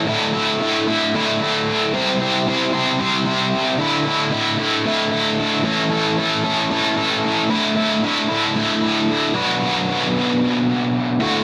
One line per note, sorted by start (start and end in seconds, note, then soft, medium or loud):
0.06 0.60 D2 medium
0.06 0.59 A2 medium
0.06 0.34 D3 loud
0.06 0.33 A3 loud
0.06 0.33 E4 loud
0.33 0.60 D3 medium
0.33 0.60 A3 medium
0.33 0.62 E4 medium
0.60 1.14 A2 medium
0.60 0.88 D3 medium
0.60 0.87 A3 medium
0.60 0.87 E4 medium
0.87 1.14 D3 medium
0.87 1.14 A3 medium
0.87 1.15 E4 medium
1.14 1.67 D2 medium
1.14 1.67 A2 loud
1.14 1.41 D3 medium
1.14 1.41 A3 loud
1.14 1.40 E4 loud
1.41 1.93 D3 medium
1.41 1.93 A3 medium
1.41 1.95 E4 medium
1.93 2.47 C3 medium
1.93 2.47 G3 medium
1.93 2.21 C4 medium
1.93 2.21 E4 loud
1.93 2.20 G4 loud
1.93 2.19 C5 loud
2.20 2.46 C4 medium
2.20 2.48 E4 medium
2.20 2.47 G4 medium
2.20 2.48 C5 medium
2.47 2.73 C4 medium
2.47 2.74 E4 medium
2.47 2.72 G4 medium
2.47 2.72 C5 medium
2.73 2.99 C4 medium
2.73 3.00 E4 medium
2.73 3.00 G4 medium
2.73 3.00 C5 medium
2.99 3.53 C3 medium
2.99 3.53 G3 medium
2.99 3.26 C4 loud
2.99 3.26 E4 medium
2.99 3.25 G4 loud
2.99 3.24 C5 loud
3.25 3.78 C4 soft
3.25 3.80 E4 medium
3.25 3.78 G4 medium
3.25 3.77 C5 medium
3.79 4.32 D2 medium
3.79 4.30 A2 medium
3.79 4.06 D3 loud
3.79 4.06 A3 loud
3.79 4.05 E4 loud
4.05 4.31 D3 medium
4.05 4.33 A3 medium
4.05 4.33 E4 medium
4.31 4.85 A2 medium
4.31 4.60 D3 medium
4.31 4.59 A3 medium
4.31 4.58 E4 medium
4.58 4.85 D3 medium
4.58 4.86 A3 medium
4.58 4.87 E4 medium
4.85 5.39 D2 medium
4.85 5.39 A2 loud
4.85 5.12 D3 loud
4.85 5.11 A3 loud
4.85 5.10 E4 loud
5.11 5.64 D3 medium
5.11 5.64 A3 medium
5.11 5.65 E4 medium
5.63 6.17 A2 medium
5.63 6.70 E3 loud
5.63 5.92 A3 medium
5.63 5.91 C#4 loud
5.63 5.91 E4 loud
5.63 5.90 A4 medium
5.90 6.17 A3 medium
5.90 6.17 C#4 medium
5.90 6.18 E4 medium
5.90 6.19 A4 medium
6.17 6.44 A3 medium
6.17 6.44 C#4 medium
6.17 6.43 E4 medium
6.17 6.43 A4 medium
6.44 6.70 A3 medium
6.44 6.70 C#4 medium
6.44 6.71 E4 medium
6.44 6.71 A4 medium
6.70 7.24 A2 loud
6.70 7.24 E3 loud
6.70 6.97 A3 medium
6.70 6.97 C#4 loud
6.70 6.96 E4 loud
6.70 6.95 A4 loud
6.97 7.49 A3 medium
6.97 7.49 C#4 medium
6.97 7.49 E4 medium
6.97 7.48 A4 medium
7.49 8.03 D2 medium
7.49 8.02 A2 medium
7.49 7.76 D3 loud
7.49 7.75 A3 loud
7.49 7.75 E4 medium
7.76 8.03 D3 medium
7.76 8.03 A3 medium
7.76 8.04 E4 medium
8.03 8.55 A2 medium
8.03 8.30 D3 medium
8.03 8.29 A3 medium
8.03 8.28 E4 medium
8.29 8.55 D3 medium
8.29 8.55 A3 medium
8.29 8.56 E4 medium
8.55 9.08 D2 medium
8.55 9.09 A2 loud
8.55 8.82 D3 loud
8.55 8.81 A3 loud
8.55 8.80 E4 medium
8.82 9.34 D3 medium
8.82 9.34 A3 medium
8.82 9.33 E4 medium
9.34 11.18 B2 medium
9.34 11.18 F#3 loud
9.34 11.18 B3 loud
9.34 11.18 D4 medium
9.34 11.19 F#4 loud
9.34 11.19 B4 loud
11.20 11.44 D2 medium
11.20 11.44 A2 medium
11.20 11.44 D3 loud
11.20 11.44 A3 loud
11.20 11.44 F#4 loud